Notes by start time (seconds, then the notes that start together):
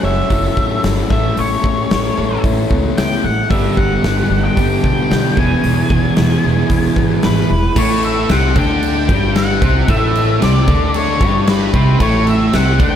Already playing: F#3 C#4 F#4 A4
0.03 F#1 C#5 E5
0.30 F#1 F#3 C#4 E4 F#4 A4, kick, open hi-hat
0.57 A1 A3, kick
0.84 G1 E4, snare, open hi-hat
1.10 A1 A3 C#4 E4 A4 E5, kick, snare
1.37 A1 A3 C#5, open hi-hat
1.64 A1 C#5, kick
1.90 A1 A4, snare, open hi-hat
2.17 A1 A3 C#4 E4 A4 C#5
2.44 A1 E4, kick, open hi-hat
2.71 C#2 B3, kick
2.97 C#2 E4 G5, snare, open hi-hat
3.24 A1 A4 F#5
3.50 G1 G2 D3 G3 B3 D4 G4 E5, kick, open hi-hat
3.77 G1 G4 F#5, kick
4.04 G1 D4, snare, open hi-hat
4.30 G1 G4
4.45 G5
4.57 G1 G3 B3 D4 G4, kick, open hi-hat
4.84 B1 G3 G5, kick
5.11 B1 B3, snare, open hi-hat
5.37 E1 E2 B2 E3 B3 E4 G#4 G#5, kick
5.64 E1 E3, open hi-hat
5.90 E1 G#4, kick
6.16 E1 E4, snare, open hi-hat
6.44 E1 E3 B3 E4 G#4
6.70 E1 B3, kick, open hi-hat
6.96 G#1 E3, kick
7.23 G#1 B3 B4, snare, open hi-hat
7.50 E1 E4
7.76 A1 A2 A3 C#5, kick, crash
8.03 E5, crash
8.29 C2 C3 C4 F#5, snare, crash
8.55 D2 D3 D4 G5, kick, crash
8.83 crash
9.09 G1 G2 G3, kick, crash
9.36 F#5, snare, crash
9.61 C2 C3 C4, kick, crash
9.88 A1 A2 A3 E5, kick, crash
10.15 crash
10.41 C2 C3 C4 D5, snare, crash
10.68 D2 D3 D4, kick, crash
10.94 C#5, crash
11.20 G1 G2 G3, kick, crash
11.47 B4, snare, crash
11.74 C2 C3 C4, kick, crash
11.99 A1 A2 A3 C#5, kick, crash
12.27 E5, crash
12.53 C2 C3 C4 F#5, snare, crash
12.80 D2 D3 D4 G5, kick, crash